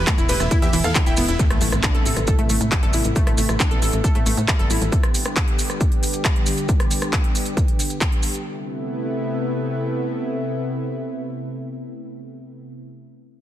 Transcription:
Already playing: A2 E3 B3 E4
0.07 A3 E4, kick, clap, closed hi-hat, ride, maracas
0.18 F1 E4, closed hi-hat, maracas
0.29 E1 E4 G4 B4, open hi-hat, ride, maracas
0.40 E1 E4, cross-stick, closed hi-hat, maracas
0.51 E4, kick, closed hi-hat, ride, maracas
0.62 E2 E3 G4 E5, closed hi-hat, maracas
0.73 E1 E3 E4, open hi-hat, ride, maracas
0.84 E2 A4 F5, closed hi-hat, maracas
0.95 D3 E4, kick, clap, closed hi-hat, ride, maracas
1.06 D1 E4 E5 G5, closed hi-hat, maracas
1.17 E1 B3 E4, open hi-hat, ride, maracas
1.28 E1 E4, closed hi-hat, maracas
1.39 C3 A3 B3 E4, kick, closed hi-hat, impact, maracas
1.50 A1 A3, cross-stick, closed hi-hat
1.61 A1 A3, open hi-hat, maracas
1.72 A1, cross-stick, closed hi-hat, maracas
1.83 D4, kick, clap, closed hi-hat, maracas
1.94 B1 A4, closed hi-hat
2.05 A1 A4, open hi-hat, maracas
2.16 A1, cross-stick, closed hi-hat, maracas
2.27 A4, kick, closed hi-hat, maracas
2.39 A2 A3, closed hi-hat
2.50 A1 A3, open hi-hat, maracas
2.61 A2, closed hi-hat, maracas
2.72 G3, kick, clap, closed hi-hat, maracas
2.83 G1 A4, closed hi-hat
2.93 A1 E4, open hi-hat, maracas
3.04 A1, closed hi-hat, maracas
3.15 A3, kick, closed hi-hat, maracas
3.27 A1 A3, cross-stick, closed hi-hat
3.38 A1 A3, open hi-hat, maracas
3.49 A1, cross-stick, closed hi-hat, maracas
3.60 D4, kick, clap, closed hi-hat, maracas
3.71 B1 A4, closed hi-hat
3.82 A1 A4, open hi-hat, maracas
3.92 A1, closed hi-hat, maracas
4.04 A4, kick, closed hi-hat, maracas
4.15 A2 A3, closed hi-hat
4.26 A1 A3, open hi-hat, maracas
4.37 A2, closed hi-hat, maracas
4.48 G3, kick, clap, closed hi-hat, maracas
4.59 G1 A4, closed hi-hat
4.70 A1 E4, open hi-hat, maracas
4.81 A1, closed hi-hat, maracas
4.92 D3 G3 G4, kick, closed hi-hat, maracas
5.03 cross-stick, closed hi-hat
5.14 open hi-hat, maracas
5.25 cross-stick, closed hi-hat, maracas
5.36 kick, clap, closed hi-hat, maracas
5.48 closed hi-hat
5.59 open hi-hat, maracas
5.70 cross-stick, closed hi-hat, maracas
5.80 kick, closed hi-hat, maracas
5.92 closed hi-hat
6.03 open hi-hat, maracas
6.13 closed hi-hat, maracas
6.24 kick, clap, closed hi-hat, maracas
6.36 closed hi-hat
6.46 open hi-hat, maracas
6.57 closed hi-hat, maracas
6.68 kick, closed hi-hat, maracas
6.80 cross-stick, closed hi-hat
6.91 open hi-hat, maracas
7.01 cross-stick, closed hi-hat, maracas
7.13 kick, clap, closed hi-hat, maracas
7.24 closed hi-hat
7.35 open hi-hat, maracas
7.45 closed hi-hat, maracas
7.57 kick, closed hi-hat, maracas
7.68 closed hi-hat
7.79 open hi-hat, maracas
7.90 closed hi-hat, maracas
8.01 kick, clap, closed hi-hat, maracas
8.12 closed hi-hat
8.23 open hi-hat, maracas
8.34 closed hi-hat, maracas
8.45 C3 A3 B3 E4

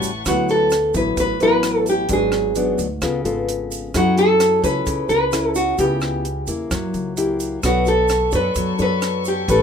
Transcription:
Already playing: A2 F#4 B4 F#5 A5 C#6
0.02 A1, closed hi-hat, shaker
0.25 D2 D3 F#3 B3 E4 F#4, kick, cross-stick, closed hi-hat, shaker
0.48 A4, closed hi-hat, shaker
0.70 cross-stick, closed hi-hat, shaker
0.94 A1 F#3 B3 E4 B4, kick, closed hi-hat, shaker
1.17 A1 A2 B4, kick, closed hi-hat, shaker
1.40 A1 F#3 B3 E4 B4, closed hi-hat, shaker
1.63 cross-stick, closed hi-hat, shaker
1.86 G4, closed hi-hat, shaker
2.09 G#1 G#2 F#3 B3 D4, kick, closed hi-hat, shaker
2.13 G#4
2.32 cross-stick, closed hi-hat, shaker
2.55 F#3 B3 D4, closed hi-hat, shaker
2.78 D2, closed hi-hat, shaker
3.01 C#2 C#3 B3 F4 A4, kick, cross-stick, closed hi-hat, shaker
3.25 G#1 B3 F4 A4, closed hi-hat, shaker
3.49 closed hi-hat
3.71 closed hi-hat, shaker
3.94 F#2 F#3 C#4 E4 F#4 A4, kick, cross-stick, closed hi-hat, shaker
4.17 A4, closed hi-hat, shaker
4.40 cross-stick, closed hi-hat, shaker
4.64 C#2 C#4 E4 A4 B4, kick, closed hi-hat, shaker
4.86 C#2 C#3, kick, closed hi-hat, shaker
5.09 C#2 B4, closed hi-hat, shaker
5.32 C#4 E4 A4, cross-stick, closed hi-hat, shaker
5.55 F#4, closed hi-hat, shaker
5.78 C#2 C#3 B3 E4 G4, kick, closed hi-hat, shaker
6.01 cross-stick, closed hi-hat, shaker
6.25 closed hi-hat
6.47 E2 A#3 E4, closed hi-hat, shaker
6.71 F#2 F#3, kick, cross-stick, closed hi-hat, shaker
6.94 C#2, closed hi-hat, shaker
7.17 A#3 E4 G4, closed hi-hat, shaker
7.40 closed hi-hat, shaker
7.63 B1 B3 D4 F#4 A4 C#5 C#6, kick, cross-stick, closed hi-hat, shaker
7.85 A4, closed hi-hat, shaker
8.08 cross-stick, closed hi-hat, shaker
8.32 F#2 D4 A4 B4 C#5, kick, closed hi-hat, shaker
8.55 F#2 F#3, kick, closed hi-hat, shaker
8.79 F#2 D4 A4 B4 C#5, closed hi-hat, shaker
9.02 cross-stick, closed hi-hat, shaker
9.25 G4, closed hi-hat, shaker
9.48 A1 A3 C#4 G4 A4 B4 G5, kick, closed hi-hat, shaker

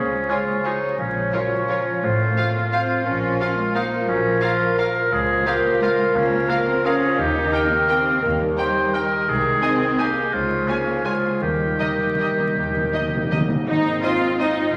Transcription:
Already playing: C#2 C#3 F3 G#3 A#3 C#4 F4 G#4 C#5
0.11 G#3
0.29 F4 G#4 C#5
0.47 C#5
0.64 D#4 F4 G#4 C#5
0.82 C#5
0.98 A#1 A#2 F3 C#4 F4 C#5
1.16 A#3
1.33 F#3 C#4 F4 A#4 C#5
1.51 C#5
1.69 F3 F4 A#4 C#5
1.86 C#5
2.03 A1 A2 F3 A3 F4 C5
2.19 C4
2.37 F4 C5 F5
2.54 A#3 F5
2.72 F3 C4 F4 C5 F5
2.89 F5
3.05 A#1 A#2 F3 C#4 F4 A#4
3.23 A#3
3.39 F4 A#4 F5
3.57 G#3 F5
3.75 F3 A#3 D#4 F4 A#4 F5
3.93 F5
4.08 A#1 A#2 F#3 C#4
4.25 F3 A#3
4.42 F4 A#4 F5
4.60 F5
4.78 F4 A#4 F5
4.95 F5
5.11 C#2 C#3 F3 G#3 F4 G#4 A#4
5.28 A#3
5.46 F3 A#3 F4 G4 A#4 F5
5.64 F5
5.81 F3 G#3 F4 A#4 F5
5.99 F5
6.15 C#2 C#3 F3 A#3 C#4 A#4
6.32 A#3
6.49 F4 A#4 F5
6.67 C4 F5
6.84 F3 C#4 F4 G#4 A#4 F5
7.01 F5
7.17 D#2 D#3 D#4 G4 A#4
7.34 A#3
7.52 D#4 G4 A#4 G5
7.70 A#3 D#5
7.87 C4 D#4 A#4 G5
8.05 D#5
8.22 D#2 D#3 A#3 G4
8.38 G3 A#3
8.57 D#4 G4 A#4 C5 G5
8.75 D#5
8.94 D#4 A#4 G5
9.11 D#5
9.27 C2 C3 D#3 G#3 D#4 G#4
9.45 D#4
9.62 D#3 C4 D#4 G#4 D#5 G#5
9.81 D#5
9.98 A#3 D#4 G4 G#4 D#5 G#5
10.16 D#5
10.32 C#2 C#3 F3 G#3 F4 G#4
10.50 C#4
10.67 A#3 C#4 F4 G#4 C#5 G#5
10.87 F5
11.04 F3 G#3 F4 G#4 C#5 G#5
11.23 F5
11.41 D#2 D#3 G3 D#4 G4 A#4
11.49 D#3
11.57 D#3 D#4
11.65 D#3
11.73 D#3
11.80 D#3 D#4 A#4 D#5
11.90 D#3
11.98 D#3 A#4
12.06 D#3
12.15 D#3
12.19 D#3 D#4 A#4 D#5
12.31 D#3
12.38 D#3 A#4
12.46 D#3
12.54 D#2 D#3
12.61 D#3
12.69 D#3
12.74 D#3 D#4
12.84 D#3
12.93 D#3 D#4 A#4 D#5
13.01 D#3
13.09 D#3 A#4
13.17 D#3
13.25 D#3
13.31 D#3 D#4 A#4 D#5
13.40 D#3
13.48 D#3 A#4
13.56 D#3
13.67 G#1 G#2 C4 D#4
13.84 C4
14.02 F4 C5 D#5
14.21 C5
14.39 D#4 C5 D#5
14.57 D#4
14.73 G#1 G#2 G#3 F4

